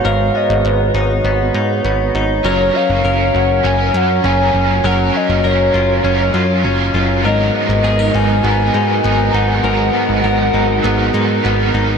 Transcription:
<<
  \new Staff \with { instrumentName = "Soft synth lead" } { \time 4/4 \key gis \dorian \tempo 4 = 100 eis''8 dis''8 b'4 r2 | cis''8 eis''4 fis''8 gis''8 fis''8 gis''4 | fis''8 dis''8 cis''2 r4 | dis''8 dis''4 gis''2 fis''8~ |
fis''2.~ fis''8 r8 | }
  \new Staff \with { instrumentName = "Clean electric guitar" } { \time 4/4 \key gis \dorian <gis, b dis' ais'>8 b4 dis'8 b8 dis'8 b8 dis'8 | <fis ais'>8 cis'8 ais'4 cis'4 cis'4 | <fis ais'>8 cis'8 ais'8 eis'8 cis'8 eis'8 cis'8 eis'8 | <gis, ais'>8 b8 gis'16 ais'16 dis'8 b8 dis'8 b8 dis'8 |
<gis, ais'>8 b8 ais'8 dis'8 b8 dis'8 b8 dis'8 | }
  \new Staff \with { instrumentName = "Overdriven electric guitar" } { \time 4/4 \key gis \dorian r1 | <fis cis' eis' ais'>8 <cis' ais'>4. <fis cis' ais'>4 <fis cis' eis' ais'>4 | <fis cis' ais'>8 <cis' eis' ais'>4. <fis cis' eis' ais'>4 <fis cis' eis' ais'>4 | <gis, dis fis b dis' ais'>2 <fis b dis' ais'>4 <fis b dis' ais'>4 |
<gis, dis fis b dis' ais'>2 <fis b dis' ais'>4 <fis b dis' ais'>4 | }
  \new Staff \with { instrumentName = "French horn section" } { \time 4/4 \key gis \dorian << { <gis fis'>1 | <fis cis'>1~ | <fis cis'>1 | <gis fis' ais'>1~ |
<gis fis' ais'>1 | } \\ { <b cis''>1~ | <b cis''>1~ | <b cis''>1 | b1~ |
b1 | } >> }
  \new Staff \with { instrumentName = "Analog synth bass" } { \clef bass \time 4/4 \key gis \dorian gis,,8 r16 gis,,16 gis,,8 gis,,8 gis,,8 gis,8 gis,,8 gis,,8 | fis,,8 r16 fis,,16 fis,,8 fis,,8 fis,,8 fis,8 fis,,8 fis,,8 | fis,,8 r16 fis,,16 fis,,8 fis,,8 fis,,8 fis,8 fis,,8 fis,,8 | gis,,8 r16 gis,,16 gis,,8 gis,,8 gis,,8 gis,8 gis,,8 gis,,8 |
gis,,8 r16 gis,,16 gis,,8 gis,,8 gis,,8 gis,8 gis,,8 gis,,8 | }
>>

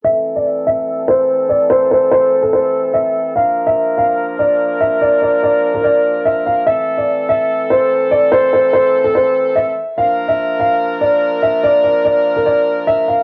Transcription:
<<
  \new Staff \with { instrumentName = "Grand piano" } { \time 4/4 \key a \phrygian \tempo 4 = 145 e''8. d''8. e''4 c''4 d''8 | c''8 c''8 c''8. a'16 c''4 e''4 | f''8. e''8. f''4 d''4 e''8 | d''8 d''8 d''8. bes'16 d''4 e''8 f''8 |
e''8. d''8. e''4 c''4 d''8 | c''8 c''8 c''8. a'16 c''4 e''4 | f''8. e''8. f''4 d''4 e''8 | d''8 d''8 d''8. bes'16 d''4 e''8 f''8 | }
  \new Staff \with { instrumentName = "Woodwind section" } { \time 4/4 \key a \phrygian <e a c' a'>1~ | <e a c' a'>1 | <f bes d' bes'>1~ | <f bes d' bes'>1 |
<e a c' a'>1~ | <e a c' a'>1 | <f bes d' bes'>1~ | <f bes d' bes'>1 | }
>>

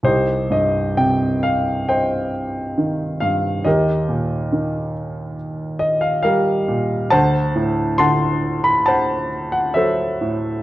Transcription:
<<
  \new Staff \with { instrumentName = "Grand piano" } { \time 4/4 \key c \minor \tempo 4 = 68 << { c''8 ees''8 g''8 f''8 g''4. f''8 | ees''4. r4 ees''16 f''16 f''4 | a''4 c'''8. b''16 a''8. fis''16 e''4 | } \\ { <ees' g'>2 <c'' ees''>2 | <g' bes'>2 r4 bes'4 | <c'' fis''>4 <fis'' a''>4 <c'' fis''>4 <a' c''>4 | } >> }
  \new Staff \with { instrumentName = "Grand piano" } { \clef bass \time 4/4 \key c \minor c,8 g,8 c2 ees8 g,8 | ees,8 bes,8 ees2 g8 bes,8 | d,8 a,8 d2 fis8 a,8 | }
>>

